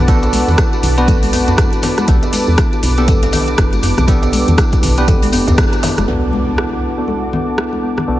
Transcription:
Already playing: fm bass B1, analog synth pad B4 F#5 A5 D6
0.08 tine electric piano B3 D4 F#4 A4, kalimba B3, kick, closed hi-hat, tambourine
0.23 closed hi-hat, tambourine, djembe slap
0.33 open hi-hat, tambourine, high conga
0.48 fm bass E2, tambourine, low conga
0.58 kalimba E4, kick, cross-stick, closed hi-hat, tambourine
0.73 kalimba F#4, tambourine
0.83 fm bass B1, open hi-hat, tambourine, djembe tone, low conga
0.98 tine electric piano B3 D4 F#4 B4, kalimba B3, closed hi-hat, tambourine
1.07 kalimba A4, kick, closed hi-hat, tambourine, high conga, djembe tone, low conga
1.23 kalimba D4, open hi-hat, tambourine, high conga
1.33 kalimba B3, open hi-hat, tambourine, djembe tone
1.48 kalimba D4, closed hi-hat, tambourine, djembe slap, djembe bass
1.57 kalimba E4, kick, cross-stick, closed hi-hat, tambourine, djembe tone, high conga
1.73 kalimba F#4, closed hi-hat, tambourine
1.82 kalimba B3, open hi-hat, tambourine, djembe slap, low conga
1.98 cross-stick, closed hi-hat, tambourine, high conga
2.08 fm bass B1, kalimba B3, tine electric piano B3 D4 G4 A4, analog synth pad D6, kick, closed hi-hat, tambourine
2.23 closed hi-hat, tambourine, djembe slap
2.33 open hi-hat, tambourine, high conga
2.47 fm bass E2, tambourine
2.58 kalimba E4, kick, cross-stick, closed hi-hat, tambourine
2.73 kalimba F#4, tambourine
2.83 fm bass B1, open hi-hat, tambourine, djembe tone
2.97 kalimba B3, tine electric piano B3 D4 G4 A4, closed hi-hat, tambourine
3.08 kalimba A4, kick, closed hi-hat, tambourine, high conga, djembe bass
3.23 kalimba D4, closed hi-hat, tambourine, djembe slap
3.33 kalimba B3, open hi-hat, tambourine, djembe slap, low conga
3.47 kalimba D4, closed hi-hat, tambourine
3.58 fm bass F#1, kalimba E4, kick, cross-stick, closed hi-hat, tambourine
3.73 kalimba F#4, closed hi-hat, tambourine, high conga
3.83 kalimba B3, open hi-hat, tambourine, djembe bass
3.97 fm bass B1, cross-stick, closed hi-hat, tambourine, djembe tone, low conga
4.08 kalimba B3, tine electric piano B3 D4 G4 A4, kick, closed hi-hat, tambourine
4.23 closed hi-hat, tambourine, djembe slap
4.33 open hi-hat, tambourine, high conga
4.48 fm bass E2, closed hi-hat, tambourine, low conga
4.58 kalimba E4, kick, cross-stick, closed hi-hat, tambourine
4.72 kalimba F#4, kick, closed hi-hat, tambourine
4.83 fm bass B1, open hi-hat, tambourine, djembe tone, low conga
4.98 kalimba B3, tine electric piano B3 D4 G4 B4, closed hi-hat, tambourine
5.08 kalimba A4, kick, closed hi-hat, tambourine, high conga, djembe tone, low conga
5.22 kalimba D4, open hi-hat, tambourine, high conga
5.32 fm bass F#1, kalimba B3, open hi-hat, tambourine, djembe tone
5.47 fm bass D2, kalimba D4, closed hi-hat, tambourine, djembe slap, djembe bass
5.58 kalimba E4, kick, cross-stick, closed hi-hat, tambourine, djembe tone, high conga
5.73 kalimba F#4, closed hi-hat, tambourine
5.83 kalimba B3, open hi-hat, tambourine, djembe slap, djembe tone, low conga
5.97 fm bass F#1, cross-stick, closed hi-hat, tambourine, high conga
6.08 fm bass B1, tine electric piano B3 D4 F#4 A4, kalimba B3, analog synth pad B4 F#5 A5 D6, impact
6.33 high conga
6.58 kalimba E4, cross-stick
6.73 kalimba F#4
6.98 kalimba B3, tine electric piano B3 D4 F#4 A4
7.08 kalimba A4, high conga
7.23 kalimba D4
7.33 kalimba B3, low conga
7.48 kalimba D4
7.58 kalimba E4, cross-stick
7.73 kalimba F#4, high conga
7.83 kalimba B3
7.98 cross-stick, low conga
8.08 fm bass B1, kalimba B3, tine electric piano B3 D4 F#4 A4

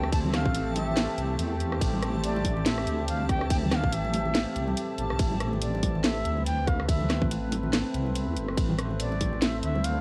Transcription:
Already playing: wobble bass D2, synth texture E3 A5, ambient pad A3 C4 G4, shakuhachi G5
0.03 cross-stick
0.12 shakuhachi A5, kick, closed hi-hat, ride
0.25 high conga, low conga
0.34 shakuhachi F5, cross-stick, snare, closed hi-hat
0.45 wobble bass A1, kick, low conga
0.55 closed hi-hat, ride
0.76 shakuhachi E5, open hi-hat, muted conga
0.87 low conga
0.97 snare, closed hi-hat, ride
1.18 wobble bass C2, closed hi-hat
1.39 wobble bass E2, closed hi-hat, ride
1.60 closed hi-hat
1.72 cross-stick
1.81 wobble bass A1, kick, closed hi-hat, ride
1.93 high conga, low conga
2.03 cross-stick, closed hi-hat
2.14 low conga
2.24 shakuhachi D5, closed hi-hat, ride
2.36 muted conga
2.45 kick, open hi-hat, muted conga
2.57 low conga
2.66 shakuhachi E5, snare, closed hi-hat, ride
2.78 cross-stick
2.87 wobble bass D2, closed hi-hat
3.08 shakuhachi F5, closed hi-hat, ride
3.21 high conga
3.29 shakuhachi G5, kick, cross-stick, closed hi-hat
3.41 cross-stick
3.50 shakuhachi G5, kick, closed hi-hat, ride
3.62 high conga, low conga
3.71 shakuhachi F5 G5, cross-stick, snare, closed hi-hat
3.84 wobble bass A1, kick, low conga
3.93 shakuhachi E5, closed hi-hat, ride
4.04 muted conga
4.14 open hi-hat, muted conga
4.25 low conga
4.35 snare, closed hi-hat, ride
4.56 wobble bass C2, closed hi-hat
4.68 high conga
4.77 closed hi-hat, ride
4.98 wobble bass A1, closed hi-hat
5.10 wobble bass C2, cross-stick
5.19 wobble bass A1, ambient pad A3 C4 B4, kick, closed hi-hat, ride
5.31 high conga, low conga
5.40 cross-stick, closed hi-hat
5.53 low conga
5.62 shakuhachi D5, closed hi-hat, ride
5.75 muted conga
5.83 kick, open hi-hat, muted conga
5.95 low conga
6.04 shakuhachi E5, snare, closed hi-hat, ride
6.25 wobble bass D2, closed hi-hat
6.37 high conga
6.46 shakuhachi G5, closed hi-hat, ride
6.67 shakuhachi F5, kick, cross-stick, closed hi-hat
6.80 cross-stick
6.88 shakuhachi E5, kick, closed hi-hat, ride
7.00 high conga, low conga
7.10 cross-stick, snare, closed hi-hat
7.21 wobble bass A1, kick, low conga
7.31 closed hi-hat, ride
7.52 open hi-hat, muted conga
7.63 low conga
7.73 snare, closed hi-hat, ride
7.94 wobble bass C2, closed hi-hat
8.06 high conga
8.15 closed hi-hat, ride
8.27 wobble bass E2
8.36 wobble bass G1, closed hi-hat
8.48 cross-stick
8.57 wobble bass A1, ambient pad E4, kick, closed hi-hat, ride
8.69 high conga, low conga
8.79 cross-stick, closed hi-hat
8.90 low conga
9.00 shakuhachi D5, closed hi-hat, ride
9.12 muted conga
9.21 kick, open hi-hat, muted conga
9.33 low conga
9.42 shakuhachi E5, snare, closed hi-hat, ride
9.63 wobble bass D2, shakuhachi E5, closed hi-hat
9.75 high conga
9.84 shakuhachi F5, closed hi-hat, ride

